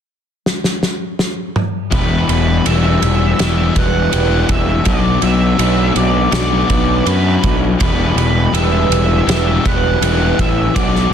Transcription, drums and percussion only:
0, 0, Header, 1, 2, 480
1, 0, Start_track
1, 0, Key_signature, 1, "minor"
1, 0, Tempo, 736196
1, 1249, Time_signature, 4, 2, 24, 8
1, 7259, End_track
2, 0, Start_track
2, 0, Title_t, "Drums"
2, 302, Note_on_c, 9, 38, 65
2, 367, Note_off_c, 9, 38, 0
2, 419, Note_on_c, 9, 38, 66
2, 485, Note_off_c, 9, 38, 0
2, 540, Note_on_c, 9, 38, 74
2, 605, Note_off_c, 9, 38, 0
2, 777, Note_on_c, 9, 38, 84
2, 842, Note_off_c, 9, 38, 0
2, 1016, Note_on_c, 9, 45, 87
2, 1081, Note_off_c, 9, 45, 0
2, 1251, Note_on_c, 9, 51, 74
2, 1254, Note_on_c, 9, 36, 101
2, 1317, Note_off_c, 9, 51, 0
2, 1319, Note_off_c, 9, 36, 0
2, 1494, Note_on_c, 9, 51, 56
2, 1559, Note_off_c, 9, 51, 0
2, 1733, Note_on_c, 9, 51, 77
2, 1798, Note_off_c, 9, 51, 0
2, 1972, Note_on_c, 9, 51, 64
2, 2037, Note_off_c, 9, 51, 0
2, 2212, Note_on_c, 9, 51, 74
2, 2218, Note_on_c, 9, 38, 94
2, 2277, Note_off_c, 9, 51, 0
2, 2283, Note_off_c, 9, 38, 0
2, 2450, Note_on_c, 9, 51, 59
2, 2453, Note_on_c, 9, 36, 76
2, 2515, Note_off_c, 9, 51, 0
2, 2518, Note_off_c, 9, 36, 0
2, 2690, Note_on_c, 9, 51, 81
2, 2756, Note_off_c, 9, 51, 0
2, 2927, Note_on_c, 9, 51, 59
2, 2930, Note_on_c, 9, 36, 77
2, 2992, Note_off_c, 9, 51, 0
2, 2995, Note_off_c, 9, 36, 0
2, 3164, Note_on_c, 9, 51, 72
2, 3170, Note_on_c, 9, 36, 97
2, 3229, Note_off_c, 9, 51, 0
2, 3235, Note_off_c, 9, 36, 0
2, 3403, Note_on_c, 9, 51, 54
2, 3468, Note_off_c, 9, 51, 0
2, 3646, Note_on_c, 9, 51, 77
2, 3711, Note_off_c, 9, 51, 0
2, 3884, Note_on_c, 9, 51, 58
2, 3949, Note_off_c, 9, 51, 0
2, 4122, Note_on_c, 9, 51, 73
2, 4128, Note_on_c, 9, 38, 99
2, 4188, Note_off_c, 9, 51, 0
2, 4194, Note_off_c, 9, 38, 0
2, 4367, Note_on_c, 9, 51, 54
2, 4368, Note_on_c, 9, 36, 78
2, 4432, Note_off_c, 9, 51, 0
2, 4433, Note_off_c, 9, 36, 0
2, 4606, Note_on_c, 9, 51, 69
2, 4671, Note_off_c, 9, 51, 0
2, 4847, Note_on_c, 9, 51, 54
2, 4850, Note_on_c, 9, 36, 78
2, 4913, Note_off_c, 9, 51, 0
2, 4915, Note_off_c, 9, 36, 0
2, 5088, Note_on_c, 9, 51, 73
2, 5091, Note_on_c, 9, 36, 96
2, 5153, Note_off_c, 9, 51, 0
2, 5156, Note_off_c, 9, 36, 0
2, 5332, Note_on_c, 9, 51, 52
2, 5397, Note_off_c, 9, 51, 0
2, 5572, Note_on_c, 9, 51, 76
2, 5637, Note_off_c, 9, 51, 0
2, 5814, Note_on_c, 9, 51, 64
2, 5880, Note_off_c, 9, 51, 0
2, 6055, Note_on_c, 9, 51, 74
2, 6061, Note_on_c, 9, 38, 94
2, 6120, Note_off_c, 9, 51, 0
2, 6126, Note_off_c, 9, 38, 0
2, 6295, Note_on_c, 9, 36, 82
2, 6295, Note_on_c, 9, 51, 61
2, 6360, Note_off_c, 9, 51, 0
2, 6361, Note_off_c, 9, 36, 0
2, 6536, Note_on_c, 9, 51, 84
2, 6601, Note_off_c, 9, 51, 0
2, 6776, Note_on_c, 9, 36, 82
2, 6776, Note_on_c, 9, 51, 55
2, 6841, Note_off_c, 9, 36, 0
2, 6842, Note_off_c, 9, 51, 0
2, 7016, Note_on_c, 9, 36, 106
2, 7017, Note_on_c, 9, 51, 81
2, 7081, Note_off_c, 9, 36, 0
2, 7082, Note_off_c, 9, 51, 0
2, 7143, Note_on_c, 9, 38, 30
2, 7208, Note_off_c, 9, 38, 0
2, 7259, End_track
0, 0, End_of_file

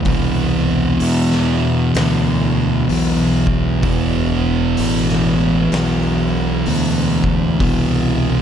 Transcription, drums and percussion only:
0, 0, Header, 1, 2, 480
1, 0, Start_track
1, 0, Tempo, 941915
1, 36, Time_signature, 4, 2, 24, 8
1, 4290, End_track
2, 0, Start_track
2, 0, Title_t, "Drums"
2, 25, Note_on_c, 9, 46, 73
2, 30, Note_on_c, 9, 36, 116
2, 76, Note_off_c, 9, 46, 0
2, 81, Note_off_c, 9, 36, 0
2, 510, Note_on_c, 9, 46, 70
2, 561, Note_off_c, 9, 46, 0
2, 669, Note_on_c, 9, 38, 37
2, 720, Note_off_c, 9, 38, 0
2, 991, Note_on_c, 9, 46, 67
2, 1002, Note_on_c, 9, 38, 122
2, 1042, Note_off_c, 9, 46, 0
2, 1053, Note_off_c, 9, 38, 0
2, 1474, Note_on_c, 9, 46, 71
2, 1525, Note_off_c, 9, 46, 0
2, 1768, Note_on_c, 9, 36, 93
2, 1819, Note_off_c, 9, 36, 0
2, 1950, Note_on_c, 9, 46, 67
2, 1953, Note_on_c, 9, 36, 118
2, 2001, Note_off_c, 9, 46, 0
2, 2004, Note_off_c, 9, 36, 0
2, 2431, Note_on_c, 9, 46, 66
2, 2482, Note_off_c, 9, 46, 0
2, 2593, Note_on_c, 9, 38, 36
2, 2644, Note_off_c, 9, 38, 0
2, 2914, Note_on_c, 9, 46, 75
2, 2925, Note_on_c, 9, 38, 127
2, 2965, Note_off_c, 9, 46, 0
2, 2976, Note_off_c, 9, 38, 0
2, 3393, Note_on_c, 9, 46, 78
2, 3444, Note_off_c, 9, 46, 0
2, 3688, Note_on_c, 9, 36, 90
2, 3739, Note_off_c, 9, 36, 0
2, 3874, Note_on_c, 9, 36, 113
2, 3875, Note_on_c, 9, 46, 78
2, 3925, Note_off_c, 9, 36, 0
2, 3926, Note_off_c, 9, 46, 0
2, 4290, End_track
0, 0, End_of_file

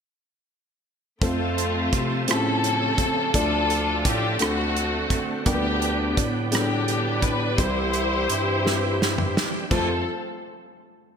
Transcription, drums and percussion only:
0, 0, Header, 1, 2, 480
1, 0, Start_track
1, 0, Key_signature, -1, "major"
1, 0, Tempo, 708383
1, 823, Time_signature, 6, 3, 24, 8
1, 7567, End_track
2, 0, Start_track
2, 0, Title_t, "Drums"
2, 824, Note_on_c, 9, 36, 88
2, 828, Note_on_c, 9, 42, 58
2, 891, Note_off_c, 9, 36, 0
2, 895, Note_off_c, 9, 42, 0
2, 1070, Note_on_c, 9, 42, 40
2, 1138, Note_off_c, 9, 42, 0
2, 1306, Note_on_c, 9, 36, 70
2, 1306, Note_on_c, 9, 42, 57
2, 1373, Note_off_c, 9, 42, 0
2, 1374, Note_off_c, 9, 36, 0
2, 1544, Note_on_c, 9, 42, 67
2, 1564, Note_on_c, 9, 37, 78
2, 1611, Note_off_c, 9, 42, 0
2, 1632, Note_off_c, 9, 37, 0
2, 1789, Note_on_c, 9, 42, 42
2, 1857, Note_off_c, 9, 42, 0
2, 2019, Note_on_c, 9, 42, 53
2, 2020, Note_on_c, 9, 36, 64
2, 2087, Note_off_c, 9, 42, 0
2, 2088, Note_off_c, 9, 36, 0
2, 2264, Note_on_c, 9, 36, 82
2, 2264, Note_on_c, 9, 42, 65
2, 2331, Note_off_c, 9, 42, 0
2, 2332, Note_off_c, 9, 36, 0
2, 2508, Note_on_c, 9, 42, 41
2, 2575, Note_off_c, 9, 42, 0
2, 2745, Note_on_c, 9, 36, 74
2, 2745, Note_on_c, 9, 42, 56
2, 2813, Note_off_c, 9, 36, 0
2, 2813, Note_off_c, 9, 42, 0
2, 2976, Note_on_c, 9, 42, 64
2, 2997, Note_on_c, 9, 37, 77
2, 3044, Note_off_c, 9, 42, 0
2, 3065, Note_off_c, 9, 37, 0
2, 3229, Note_on_c, 9, 42, 41
2, 3297, Note_off_c, 9, 42, 0
2, 3458, Note_on_c, 9, 36, 65
2, 3458, Note_on_c, 9, 42, 54
2, 3526, Note_off_c, 9, 36, 0
2, 3526, Note_off_c, 9, 42, 0
2, 3699, Note_on_c, 9, 42, 61
2, 3701, Note_on_c, 9, 36, 84
2, 3767, Note_off_c, 9, 42, 0
2, 3769, Note_off_c, 9, 36, 0
2, 3943, Note_on_c, 9, 42, 42
2, 4011, Note_off_c, 9, 42, 0
2, 4183, Note_on_c, 9, 36, 79
2, 4184, Note_on_c, 9, 42, 59
2, 4251, Note_off_c, 9, 36, 0
2, 4252, Note_off_c, 9, 42, 0
2, 4417, Note_on_c, 9, 42, 68
2, 4438, Note_on_c, 9, 37, 76
2, 4485, Note_off_c, 9, 42, 0
2, 4506, Note_off_c, 9, 37, 0
2, 4663, Note_on_c, 9, 42, 44
2, 4731, Note_off_c, 9, 42, 0
2, 4895, Note_on_c, 9, 36, 68
2, 4895, Note_on_c, 9, 42, 57
2, 4963, Note_off_c, 9, 36, 0
2, 4963, Note_off_c, 9, 42, 0
2, 5138, Note_on_c, 9, 36, 90
2, 5138, Note_on_c, 9, 42, 65
2, 5206, Note_off_c, 9, 36, 0
2, 5206, Note_off_c, 9, 42, 0
2, 5376, Note_on_c, 9, 42, 40
2, 5444, Note_off_c, 9, 42, 0
2, 5620, Note_on_c, 9, 42, 55
2, 5688, Note_off_c, 9, 42, 0
2, 5872, Note_on_c, 9, 38, 42
2, 5940, Note_off_c, 9, 38, 0
2, 6113, Note_on_c, 9, 38, 59
2, 6180, Note_off_c, 9, 38, 0
2, 6223, Note_on_c, 9, 45, 52
2, 6290, Note_off_c, 9, 45, 0
2, 6351, Note_on_c, 9, 38, 70
2, 6418, Note_off_c, 9, 38, 0
2, 6579, Note_on_c, 9, 49, 68
2, 6580, Note_on_c, 9, 36, 80
2, 6647, Note_off_c, 9, 49, 0
2, 6648, Note_off_c, 9, 36, 0
2, 7567, End_track
0, 0, End_of_file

